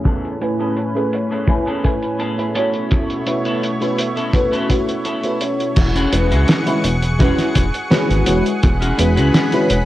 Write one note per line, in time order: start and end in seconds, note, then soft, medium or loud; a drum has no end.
0.00 0.37 A3 medium
0.00 0.37 C#4 medium
0.00 0.37 E4 medium
0.00 0.38 C#5 medium
0.00 0.37 G#5 medium
0.05 2.53 A2 medium
0.05 0.32 B3 loud
0.05 0.33 C#4 medium
0.05 2.53 C#4 medium
0.05 0.33 G#4 loud
0.05 0.33 A4 loud
0.05 2.53 B4 medium
0.05 kick loud
0.05 closed hi-hat medium
0.25 closed hi-hat medium
0.41 0.91 A3 medium
0.41 0.91 C#4 medium
0.41 0.91 E4 medium
0.41 0.92 B4 medium
0.41 0.91 G#5 medium
0.41 closed hi-hat loud
0.59 0.77 B3 medium
0.59 0.77 C#4 medium
0.59 0.77 G#4 medium
0.59 0.77 A4 medium
0.59 closed hi-hat medium
0.77 closed hi-hat medium
0.95 1.14 A3 medium
0.95 1.14 C#4 medium
0.95 1.14 E4 medium
0.95 1.14 G#4 medium
0.95 1.15 B4 medium
0.95 muted clean electric guitar stroke soft
0.95 closed hi-hat medium
1.13 closed hi-hat medium
1.30 1.48 B3 medium
1.30 1.48 C#4 medium
1.30 1.48 G#4 medium
1.30 1.48 A4 medium
1.30 closed hi-hat medium
1.48 1.80 A3 medium
1.48 1.81 C#4 medium
1.48 1.81 E4 medium
1.48 1.81 B4 medium
1.48 1.81 G#5 medium
1.48 kick loud
1.48 closed hi-hat medium
1.66 1.84 B3 loud
1.66 1.84 C#4 medium
1.66 1.84 G#4 medium
1.66 1.84 A4 loud
1.66 closed hi-hat soft
1.83 2.34 A3 medium
1.83 2.34 C#4 medium
1.83 2.34 E4 medium
1.83 2.34 B4 loud
1.83 2.34 G#5 medium
1.83 kick medium
1.83 closed hi-hat medium
2.02 muted clean electric guitar stroke soft
2.02 closed hi-hat soft
2.19 2.53 B3 medium
2.19 2.54 C#4 medium
2.19 2.55 G#4 medium
2.19 2.54 A4 medium
2.19 closed hi-hat medium
2.38 2.51 A3 medium
2.38 2.51 C#4 medium
2.38 2.51 E4 medium
2.38 2.52 G#4 medium
2.38 2.52 B4 medium
2.38 closed hi-hat medium
2.55 5.74 B2 medium
2.55 3.23 A3 medium
2.55 5.74 A3 medium
2.55 3.27 B3 medium
2.55 3.27 C#4 medium
2.55 3.23 C#4 medium
2.55 3.23 E4 medium
2.55 5.74 E4 medium
2.55 3.27 E4 medium
2.55 3.23 F#4 medium
2.55 3.27 A4 medium
2.55 5.74 C#5 medium
2.55 3.23 C#5 medium
2.55 closed hi-hat medium
2.73 closed hi-hat soft
2.91 kick loud
2.91 closed hi-hat medium
3.10 closed hi-hat medium
3.26 3.76 A3 medium
3.26 3.77 C#4 medium
3.26 3.77 E4 medium
3.26 3.77 F#4 medium
3.26 3.77 B4 medium
3.26 closed hi-hat medium
3.45 3.62 B3 medium
3.45 3.63 C#4 medium
3.45 3.63 E4 medium
3.45 3.63 A4 medium
3.45 closed hi-hat medium
3.63 closed hi-hat medium
3.80 4.00 A3 medium
3.80 4.00 C#4 medium
3.80 4.00 E4 medium
3.80 4.00 F#4 medium
3.80 4.00 B4 medium
3.80 muted clean electric guitar stroke soft
3.80 closed hi-hat soft
3.98 closed hi-hat loud
4.16 4.34 B3 medium
4.16 4.34 C#4 medium
4.16 4.34 E4 medium
4.16 4.34 A4 medium
4.16 closed hi-hat soft
4.33 4.66 A3 medium
4.33 4.66 C#4 medium
4.33 4.66 E4 medium
4.33 4.67 F#4 medium
4.33 4.67 B4 medium
4.33 kick loud
4.33 closed hi-hat medium
4.52 4.69 B3 loud
4.52 4.70 C#4 medium
4.52 4.70 E4 medium
4.52 4.70 A4 loud
4.52 closed hi-hat medium
4.69 5.19 A3 medium
4.69 5.20 C#4 medium
4.69 5.20 E4 medium
4.69 5.20 F#4 medium
4.69 5.20 B4 loud
4.69 kick medium
4.69 closed hi-hat medium
4.88 muted clean electric guitar stroke soft
4.88 closed hi-hat medium
5.05 5.41 B3 medium
5.05 5.41 C#4 medium
5.05 5.41 E4 medium
5.05 5.41 A4 medium
5.05 closed hi-hat medium
5.23 5.37 A3 medium
5.23 5.37 C#4 medium
5.23 5.37 E4 medium
5.23 5.37 F#4 medium
5.23 5.38 B4 medium
5.23 closed hi-hat medium
5.41 6.08 C#4 medium
5.41 6.09 E4 medium
5.41 6.09 F#4 medium
5.41 6.09 C#5 medium
5.41 closed hi-hat medium
5.60 closed hi-hat soft
5.76 6.07 E1 loud
5.76 9.85 G#4 medium
5.76 9.85 F#5 medium
5.76 8.60 C#6 medium
5.76 muted clean electric guitar stroke loud
5.76 kick loud
5.76 closed hi-hat medium
5.76 crash loud
5.95 6.13 C#4 medium
5.95 6.13 E4 medium
5.95 6.13 F#4 medium
5.95 6.13 G#4 medium
5.95 closed hi-hat medium
6.12 6.33 E1 loud
6.12 6.62 G#3 medium
6.12 6.62 C#4 medium
6.12 6.63 E4 medium
6.12 6.63 F#4 medium
6.12 6.63 B4 medium
6.12 closed hi-hat loud
6.31 6.46 C#2 loud
6.31 6.75 C#4 medium
6.31 6.76 E4 medium
6.31 6.76 F#4 medium
6.31 6.76 G#4 medium
6.31 closed hi-hat medium
6.48 snare loud
6.48 closed hi-hat medium
6.66 6.85 G#3 medium
6.66 6.85 C#4 medium
6.66 6.86 E4 medium
6.66 6.86 F#4 medium
6.66 6.86 B4 loud
6.66 closed hi-hat medium
6.84 7.34 E1 medium
6.84 closed hi-hat loud
7.02 closed hi-hat medium
7.19 7.52 G#3 medium
7.19 7.65 C#4 medium
7.19 7.52 C#4 medium
7.19 7.52 E4 medium
7.19 7.65 E4 medium
7.19 7.65 F#4 medium
7.19 7.52 F#4 medium
7.19 7.65 G#4 medium
7.19 7.53 B4 loud
7.19 kick loud
7.19 closed hi-hat medium
7.38 snare soft
7.38 closed hi-hat medium
7.55 7.71 E1 medium
7.55 kick medium
7.55 closed hi-hat loud
7.74 closed hi-hat medium
7.90 8.21 G#3 loud
7.90 8.22 C#4 medium
7.90 8.22 E4 medium
7.90 8.22 F#4 medium
7.90 8.22 B4 loud
7.90 snare loud
7.90 closed hi-hat medium
8.10 8.24 G#1 medium
8.10 closed hi-hat medium
8.26 8.43 E1 medium
8.26 8.47 G#3 medium
8.26 8.47 C#4 medium
8.26 8.47 E4 medium
8.26 8.47 F#4 medium
8.26 8.47 B4 loud
8.26 closed hi-hat loud
8.46 closed hi-hat medium
8.62 8.93 E1 loud
8.62 9.85 B5 loud
8.62 muted clean electric guitar stroke loud
8.62 kick loud
8.62 closed hi-hat medium
8.81 8.98 C#4 medium
8.81 8.98 E4 medium
8.81 8.99 F#4 medium
8.81 8.99 G#4 medium
8.81 closed hi-hat medium
8.98 9.19 E1 loud
8.98 9.48 G#3 medium
8.98 9.48 C#4 medium
8.98 9.48 E4 medium
8.98 9.49 F#4 medium
8.98 9.49 B4 medium
8.98 closed hi-hat loud
9.16 9.31 C#2 loud
9.16 9.61 C#4 medium
9.16 9.61 E4 medium
9.16 9.61 F#4 medium
9.16 9.62 G#4 medium
9.16 closed hi-hat medium
9.34 snare loud
9.34 closed hi-hat medium
9.52 9.71 G#3 medium
9.52 9.71 C#4 medium
9.52 9.71 E4 medium
9.52 9.72 F#4 medium
9.52 9.72 B4 loud
9.52 closed hi-hat medium
9.70 9.85 E1 medium
9.70 closed hi-hat loud